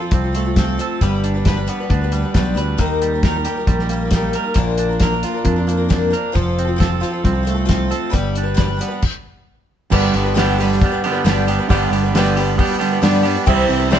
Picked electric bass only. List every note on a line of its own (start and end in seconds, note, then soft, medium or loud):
0.12 0.78 C2 medium
1.01 1.68 G1 medium
1.90 2.23 D2 loud
2.35 2.54 B1 medium
2.55 2.75 D2 medium
2.79 3.46 D#2 medium
3.67 4.34 A#1 loud
4.56 5.23 A#1 medium
5.45 6.12 F2 medium
6.35 7.02 F1 medium
7.24 7.91 C2 loud
8.13 8.80 G1 medium
9.91 10.08 G1 loud
10.14 10.81 G1 medium
11.25 11.58 G1 medium
11.70 11.86 G1 loud
11.91 12.58 G1 medium
13.03 13.36 G2 medium
13.47 13.64 C2 loud
13.69 13.99 C2 medium